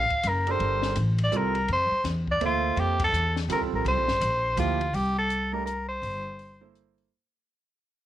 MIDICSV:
0, 0, Header, 1, 6, 480
1, 0, Start_track
1, 0, Tempo, 361446
1, 791, Time_signature, 3, 2, 24, 8
1, 10690, End_track
2, 0, Start_track
2, 0, Title_t, "Soprano saxophone"
2, 0, Program_c, 0, 64
2, 0, Note_on_c, 0, 77, 104
2, 369, Note_on_c, 0, 70, 87
2, 389, Note_off_c, 0, 77, 0
2, 676, Note_on_c, 0, 72, 82
2, 696, Note_off_c, 0, 70, 0
2, 1302, Note_off_c, 0, 72, 0
2, 1642, Note_on_c, 0, 74, 83
2, 1813, Note_on_c, 0, 70, 81
2, 1833, Note_off_c, 0, 74, 0
2, 2263, Note_off_c, 0, 70, 0
2, 2293, Note_on_c, 0, 72, 90
2, 2711, Note_off_c, 0, 72, 0
2, 3071, Note_on_c, 0, 74, 88
2, 3209, Note_off_c, 0, 74, 0
2, 3259, Note_on_c, 0, 65, 77
2, 3718, Note_on_c, 0, 67, 87
2, 3738, Note_off_c, 0, 65, 0
2, 3998, Note_off_c, 0, 67, 0
2, 4038, Note_on_c, 0, 69, 86
2, 4455, Note_off_c, 0, 69, 0
2, 4678, Note_on_c, 0, 70, 77
2, 4804, Note_off_c, 0, 70, 0
2, 4989, Note_on_c, 0, 70, 69
2, 5128, Note_off_c, 0, 70, 0
2, 5151, Note_on_c, 0, 72, 88
2, 6038, Note_off_c, 0, 72, 0
2, 6097, Note_on_c, 0, 65, 75
2, 6578, Note_on_c, 0, 67, 82
2, 6598, Note_off_c, 0, 65, 0
2, 6868, Note_off_c, 0, 67, 0
2, 6884, Note_on_c, 0, 69, 89
2, 7342, Note_on_c, 0, 70, 89
2, 7362, Note_off_c, 0, 69, 0
2, 7503, Note_off_c, 0, 70, 0
2, 7511, Note_on_c, 0, 70, 83
2, 7793, Note_off_c, 0, 70, 0
2, 7816, Note_on_c, 0, 72, 87
2, 8900, Note_off_c, 0, 72, 0
2, 10690, End_track
3, 0, Start_track
3, 0, Title_t, "Grand piano"
3, 0, Program_c, 1, 0
3, 625, Note_on_c, 1, 62, 57
3, 626, Note_on_c, 1, 69, 65
3, 635, Note_on_c, 1, 67, 58
3, 637, Note_on_c, 1, 70, 72
3, 1242, Note_off_c, 1, 62, 0
3, 1242, Note_off_c, 1, 69, 0
3, 1246, Note_off_c, 1, 67, 0
3, 1248, Note_off_c, 1, 70, 0
3, 1748, Note_on_c, 1, 60, 54
3, 1754, Note_on_c, 1, 55, 57
3, 1754, Note_on_c, 1, 69, 65
3, 1755, Note_on_c, 1, 65, 53
3, 2023, Note_off_c, 1, 60, 0
3, 2026, Note_off_c, 1, 55, 0
3, 2026, Note_off_c, 1, 65, 0
3, 2026, Note_off_c, 1, 69, 0
3, 3198, Note_on_c, 1, 76, 63
3, 3199, Note_on_c, 1, 58, 65
3, 3207, Note_on_c, 1, 69, 63
3, 3208, Note_on_c, 1, 72, 72
3, 3917, Note_off_c, 1, 76, 0
3, 3918, Note_off_c, 1, 58, 0
3, 3922, Note_off_c, 1, 69, 0
3, 3922, Note_off_c, 1, 72, 0
3, 4642, Note_on_c, 1, 55, 60
3, 4643, Note_on_c, 1, 60, 57
3, 4651, Note_on_c, 1, 65, 59
3, 4654, Note_on_c, 1, 69, 71
3, 5359, Note_off_c, 1, 55, 0
3, 5360, Note_off_c, 1, 60, 0
3, 5364, Note_off_c, 1, 65, 0
3, 5365, Note_off_c, 1, 69, 0
3, 6081, Note_on_c, 1, 58, 56
3, 6082, Note_on_c, 1, 53, 63
3, 6083, Note_on_c, 1, 64, 55
3, 6086, Note_on_c, 1, 67, 73
3, 6349, Note_off_c, 1, 58, 0
3, 6350, Note_off_c, 1, 53, 0
3, 6350, Note_off_c, 1, 64, 0
3, 6352, Note_off_c, 1, 67, 0
3, 7337, Note_on_c, 1, 57, 61
3, 7350, Note_on_c, 1, 62, 53
3, 7351, Note_on_c, 1, 67, 60
3, 7353, Note_on_c, 1, 70, 69
3, 7495, Note_off_c, 1, 57, 0
3, 7501, Note_off_c, 1, 62, 0
3, 7502, Note_off_c, 1, 67, 0
3, 7503, Note_off_c, 1, 70, 0
3, 8774, Note_on_c, 1, 64, 62
3, 8781, Note_on_c, 1, 58, 64
3, 8782, Note_on_c, 1, 69, 61
3, 8785, Note_on_c, 1, 72, 76
3, 9397, Note_off_c, 1, 64, 0
3, 9400, Note_off_c, 1, 58, 0
3, 9401, Note_off_c, 1, 69, 0
3, 9402, Note_off_c, 1, 72, 0
3, 10690, End_track
4, 0, Start_track
4, 0, Title_t, "Upright bass"
4, 0, Program_c, 2, 32
4, 314, Note_on_c, 2, 30, 77
4, 778, Note_off_c, 2, 30, 0
4, 789, Note_on_c, 2, 31, 77
4, 1256, Note_off_c, 2, 31, 0
4, 1276, Note_on_c, 2, 33, 87
4, 1740, Note_off_c, 2, 33, 0
4, 1747, Note_on_c, 2, 36, 78
4, 2215, Note_off_c, 2, 36, 0
4, 2234, Note_on_c, 2, 41, 82
4, 2515, Note_off_c, 2, 41, 0
4, 2707, Note_on_c, 2, 40, 81
4, 3175, Note_off_c, 2, 40, 0
4, 3192, Note_on_c, 2, 38, 82
4, 3657, Note_off_c, 2, 38, 0
4, 3669, Note_on_c, 2, 41, 86
4, 4136, Note_off_c, 2, 41, 0
4, 4150, Note_on_c, 2, 40, 84
4, 4616, Note_off_c, 2, 40, 0
4, 4625, Note_on_c, 2, 38, 80
4, 4795, Note_off_c, 2, 38, 0
4, 4795, Note_on_c, 2, 36, 51
4, 4941, Note_off_c, 2, 36, 0
4, 4949, Note_on_c, 2, 34, 60
4, 5099, Note_off_c, 2, 34, 0
4, 5108, Note_on_c, 2, 36, 86
4, 5266, Note_off_c, 2, 36, 0
4, 5266, Note_on_c, 2, 34, 52
4, 5421, Note_off_c, 2, 34, 0
4, 5429, Note_on_c, 2, 31, 58
4, 5579, Note_off_c, 2, 31, 0
4, 5587, Note_on_c, 2, 34, 86
4, 6054, Note_off_c, 2, 34, 0
4, 6066, Note_on_c, 2, 38, 84
4, 6534, Note_off_c, 2, 38, 0
4, 6550, Note_on_c, 2, 36, 82
4, 7938, Note_off_c, 2, 36, 0
4, 7993, Note_on_c, 2, 31, 83
4, 9381, Note_off_c, 2, 31, 0
4, 10690, End_track
5, 0, Start_track
5, 0, Title_t, "Muted upright bass strokes"
5, 2535, Note_on_c, 9, 29, 38
5, 2668, Note_off_c, 9, 29, 0
5, 10690, End_track
6, 0, Start_track
6, 0, Title_t, "Drums"
6, 136, Note_on_c, 9, 51, 41
6, 138, Note_on_c, 9, 36, 52
6, 269, Note_off_c, 9, 51, 0
6, 271, Note_off_c, 9, 36, 0
6, 311, Note_on_c, 9, 44, 55
6, 311, Note_on_c, 9, 51, 67
6, 444, Note_off_c, 9, 44, 0
6, 444, Note_off_c, 9, 51, 0
6, 622, Note_on_c, 9, 51, 43
6, 755, Note_off_c, 9, 51, 0
6, 798, Note_on_c, 9, 51, 49
6, 931, Note_off_c, 9, 51, 0
6, 1096, Note_on_c, 9, 38, 56
6, 1229, Note_off_c, 9, 38, 0
6, 1270, Note_on_c, 9, 44, 49
6, 1270, Note_on_c, 9, 51, 64
6, 1402, Note_off_c, 9, 44, 0
6, 1402, Note_off_c, 9, 51, 0
6, 1573, Note_on_c, 9, 51, 60
6, 1706, Note_off_c, 9, 51, 0
6, 1752, Note_on_c, 9, 44, 53
6, 1885, Note_off_c, 9, 44, 0
6, 2057, Note_on_c, 9, 51, 44
6, 2190, Note_off_c, 9, 51, 0
6, 2236, Note_on_c, 9, 51, 56
6, 2368, Note_off_c, 9, 51, 0
6, 2716, Note_on_c, 9, 38, 34
6, 2719, Note_on_c, 9, 44, 60
6, 2719, Note_on_c, 9, 51, 60
6, 2849, Note_off_c, 9, 38, 0
6, 2852, Note_off_c, 9, 44, 0
6, 2852, Note_off_c, 9, 51, 0
6, 3021, Note_on_c, 9, 36, 50
6, 3154, Note_off_c, 9, 36, 0
6, 3201, Note_on_c, 9, 51, 55
6, 3334, Note_off_c, 9, 51, 0
6, 3681, Note_on_c, 9, 51, 54
6, 3814, Note_off_c, 9, 51, 0
6, 3979, Note_on_c, 9, 36, 84
6, 3979, Note_on_c, 9, 51, 72
6, 4112, Note_off_c, 9, 36, 0
6, 4112, Note_off_c, 9, 51, 0
6, 4166, Note_on_c, 9, 44, 58
6, 4299, Note_off_c, 9, 44, 0
6, 4468, Note_on_c, 9, 38, 42
6, 4600, Note_off_c, 9, 38, 0
6, 4644, Note_on_c, 9, 44, 59
6, 4644, Note_on_c, 9, 51, 64
6, 4777, Note_off_c, 9, 44, 0
6, 4777, Note_off_c, 9, 51, 0
6, 5126, Note_on_c, 9, 51, 58
6, 5259, Note_off_c, 9, 51, 0
6, 5420, Note_on_c, 9, 38, 49
6, 5553, Note_off_c, 9, 38, 0
6, 5597, Note_on_c, 9, 44, 58
6, 5597, Note_on_c, 9, 51, 68
6, 5730, Note_off_c, 9, 44, 0
6, 5730, Note_off_c, 9, 51, 0
6, 6074, Note_on_c, 9, 44, 57
6, 6074, Note_on_c, 9, 51, 66
6, 6206, Note_off_c, 9, 44, 0
6, 6206, Note_off_c, 9, 51, 0
6, 6387, Note_on_c, 9, 51, 39
6, 6520, Note_off_c, 9, 51, 0
6, 6564, Note_on_c, 9, 46, 40
6, 6697, Note_off_c, 9, 46, 0
6, 7043, Note_on_c, 9, 42, 48
6, 7175, Note_off_c, 9, 42, 0
6, 7532, Note_on_c, 9, 42, 51
6, 7665, Note_off_c, 9, 42, 0
6, 8011, Note_on_c, 9, 46, 40
6, 8144, Note_off_c, 9, 46, 0
6, 8488, Note_on_c, 9, 46, 39
6, 8621, Note_off_c, 9, 46, 0
6, 8970, Note_on_c, 9, 42, 49
6, 9103, Note_off_c, 9, 42, 0
6, 9269, Note_on_c, 9, 46, 32
6, 9402, Note_off_c, 9, 46, 0
6, 10690, End_track
0, 0, End_of_file